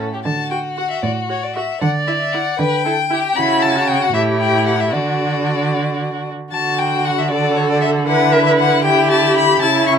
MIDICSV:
0, 0, Header, 1, 5, 480
1, 0, Start_track
1, 0, Key_signature, 2, "major"
1, 0, Tempo, 519031
1, 236, Time_signature, 6, 3, 24, 8
1, 4073, Tempo, 530035
1, 6473, Tempo, 513699
1, 9211, End_track
2, 0, Start_track
2, 0, Title_t, "Violin"
2, 0, Program_c, 0, 40
2, 226, Note_on_c, 0, 81, 56
2, 455, Note_off_c, 0, 81, 0
2, 468, Note_on_c, 0, 79, 53
2, 542, Note_off_c, 0, 79, 0
2, 708, Note_on_c, 0, 78, 54
2, 831, Note_off_c, 0, 78, 0
2, 836, Note_on_c, 0, 76, 49
2, 945, Note_off_c, 0, 76, 0
2, 950, Note_on_c, 0, 74, 54
2, 1024, Note_off_c, 0, 74, 0
2, 1202, Note_on_c, 0, 73, 53
2, 1327, Note_on_c, 0, 74, 49
2, 1341, Note_off_c, 0, 73, 0
2, 1434, Note_off_c, 0, 74, 0
2, 1439, Note_on_c, 0, 76, 57
2, 1674, Note_off_c, 0, 76, 0
2, 1679, Note_on_c, 0, 78, 56
2, 1753, Note_off_c, 0, 78, 0
2, 1916, Note_on_c, 0, 76, 54
2, 1964, Note_off_c, 0, 76, 0
2, 2037, Note_on_c, 0, 76, 55
2, 2157, Note_on_c, 0, 78, 63
2, 2170, Note_off_c, 0, 76, 0
2, 2391, Note_on_c, 0, 79, 75
2, 2405, Note_off_c, 0, 78, 0
2, 3107, Note_on_c, 0, 83, 84
2, 3121, Note_off_c, 0, 79, 0
2, 3351, Note_on_c, 0, 81, 70
2, 3365, Note_off_c, 0, 83, 0
2, 3582, Note_on_c, 0, 79, 77
2, 3596, Note_off_c, 0, 81, 0
2, 3716, Note_on_c, 0, 78, 64
2, 3730, Note_off_c, 0, 79, 0
2, 3822, Note_off_c, 0, 78, 0
2, 3828, Note_on_c, 0, 76, 74
2, 3902, Note_off_c, 0, 76, 0
2, 4073, Note_on_c, 0, 79, 70
2, 4307, Note_off_c, 0, 79, 0
2, 4312, Note_on_c, 0, 78, 61
2, 4434, Note_on_c, 0, 76, 56
2, 4448, Note_off_c, 0, 78, 0
2, 4548, Note_on_c, 0, 74, 61
2, 4562, Note_off_c, 0, 76, 0
2, 5759, Note_off_c, 0, 74, 0
2, 5991, Note_on_c, 0, 81, 69
2, 6232, Note_on_c, 0, 79, 67
2, 6245, Note_off_c, 0, 81, 0
2, 6472, Note_on_c, 0, 78, 67
2, 6486, Note_off_c, 0, 79, 0
2, 6596, Note_on_c, 0, 76, 62
2, 6610, Note_off_c, 0, 78, 0
2, 6705, Note_off_c, 0, 76, 0
2, 6710, Note_on_c, 0, 74, 69
2, 6951, Note_on_c, 0, 73, 63
2, 6965, Note_off_c, 0, 74, 0
2, 7074, Note_off_c, 0, 73, 0
2, 7078, Note_on_c, 0, 74, 67
2, 7177, Note_off_c, 0, 74, 0
2, 7183, Note_on_c, 0, 76, 70
2, 7258, Note_off_c, 0, 76, 0
2, 7427, Note_on_c, 0, 78, 80
2, 7656, Note_on_c, 0, 76, 78
2, 7670, Note_off_c, 0, 78, 0
2, 7781, Note_off_c, 0, 76, 0
2, 7786, Note_on_c, 0, 76, 75
2, 7836, Note_off_c, 0, 76, 0
2, 7905, Note_on_c, 0, 78, 77
2, 8142, Note_off_c, 0, 78, 0
2, 8147, Note_on_c, 0, 79, 82
2, 8386, Note_off_c, 0, 79, 0
2, 8393, Note_on_c, 0, 81, 86
2, 8628, Note_off_c, 0, 81, 0
2, 8640, Note_on_c, 0, 83, 91
2, 8863, Note_off_c, 0, 83, 0
2, 8868, Note_on_c, 0, 81, 88
2, 9100, Note_off_c, 0, 81, 0
2, 9106, Note_on_c, 0, 85, 81
2, 9155, Note_off_c, 0, 85, 0
2, 9211, End_track
3, 0, Start_track
3, 0, Title_t, "Viola"
3, 0, Program_c, 1, 41
3, 472, Note_on_c, 1, 66, 35
3, 546, Note_off_c, 1, 66, 0
3, 716, Note_on_c, 1, 66, 34
3, 790, Note_off_c, 1, 66, 0
3, 1193, Note_on_c, 1, 66, 37
3, 1267, Note_off_c, 1, 66, 0
3, 1443, Note_on_c, 1, 66, 38
3, 1516, Note_off_c, 1, 66, 0
3, 1916, Note_on_c, 1, 64, 40
3, 1990, Note_off_c, 1, 64, 0
3, 2161, Note_on_c, 1, 64, 40
3, 2235, Note_off_c, 1, 64, 0
3, 2634, Note_on_c, 1, 64, 42
3, 2708, Note_off_c, 1, 64, 0
3, 2869, Note_on_c, 1, 64, 47
3, 2943, Note_off_c, 1, 64, 0
3, 3109, Note_on_c, 1, 64, 59
3, 3467, Note_on_c, 1, 66, 54
3, 3481, Note_off_c, 1, 64, 0
3, 3830, Note_on_c, 1, 67, 54
3, 3844, Note_off_c, 1, 66, 0
3, 4547, Note_off_c, 1, 67, 0
3, 4553, Note_on_c, 1, 66, 49
3, 5791, Note_off_c, 1, 66, 0
3, 5994, Note_on_c, 1, 66, 56
3, 6707, Note_on_c, 1, 69, 62
3, 6721, Note_off_c, 1, 66, 0
3, 7430, Note_off_c, 1, 69, 0
3, 7435, Note_on_c, 1, 71, 73
3, 8139, Note_off_c, 1, 71, 0
3, 8148, Note_on_c, 1, 67, 69
3, 8876, Note_on_c, 1, 64, 72
3, 8890, Note_off_c, 1, 67, 0
3, 9211, Note_off_c, 1, 64, 0
3, 9211, End_track
4, 0, Start_track
4, 0, Title_t, "Violin"
4, 0, Program_c, 2, 40
4, 0, Note_on_c, 2, 69, 38
4, 109, Note_off_c, 2, 69, 0
4, 125, Note_on_c, 2, 67, 34
4, 172, Note_off_c, 2, 67, 0
4, 231, Note_on_c, 2, 66, 53
4, 1639, Note_off_c, 2, 66, 0
4, 1685, Note_on_c, 2, 74, 50
4, 2386, Note_off_c, 2, 74, 0
4, 2398, Note_on_c, 2, 71, 58
4, 2631, Note_off_c, 2, 71, 0
4, 2639, Note_on_c, 2, 69, 48
4, 2713, Note_off_c, 2, 69, 0
4, 2872, Note_on_c, 2, 67, 53
4, 3116, Note_on_c, 2, 66, 60
4, 3130, Note_off_c, 2, 67, 0
4, 3827, Note_on_c, 2, 64, 65
4, 3841, Note_off_c, 2, 66, 0
4, 4551, Note_on_c, 2, 66, 46
4, 4565, Note_off_c, 2, 64, 0
4, 5640, Note_off_c, 2, 66, 0
4, 6001, Note_on_c, 2, 66, 49
4, 6677, Note_off_c, 2, 66, 0
4, 6711, Note_on_c, 2, 66, 58
4, 7422, Note_off_c, 2, 66, 0
4, 7441, Note_on_c, 2, 64, 57
4, 8142, Note_off_c, 2, 64, 0
4, 8157, Note_on_c, 2, 64, 70
4, 8859, Note_off_c, 2, 64, 0
4, 8869, Note_on_c, 2, 64, 63
4, 9211, Note_off_c, 2, 64, 0
4, 9211, End_track
5, 0, Start_track
5, 0, Title_t, "Cello"
5, 0, Program_c, 3, 42
5, 238, Note_on_c, 3, 50, 50
5, 815, Note_off_c, 3, 50, 0
5, 956, Note_on_c, 3, 45, 49
5, 1533, Note_off_c, 3, 45, 0
5, 1680, Note_on_c, 3, 50, 56
5, 2253, Note_off_c, 3, 50, 0
5, 2398, Note_on_c, 3, 50, 58
5, 2967, Note_off_c, 3, 50, 0
5, 3120, Note_on_c, 3, 49, 57
5, 3796, Note_off_c, 3, 49, 0
5, 3831, Note_on_c, 3, 45, 59
5, 4554, Note_on_c, 3, 50, 50
5, 4568, Note_off_c, 3, 45, 0
5, 5817, Note_off_c, 3, 50, 0
5, 5998, Note_on_c, 3, 50, 55
5, 8834, Note_off_c, 3, 50, 0
5, 8869, Note_on_c, 3, 49, 65
5, 9211, Note_off_c, 3, 49, 0
5, 9211, End_track
0, 0, End_of_file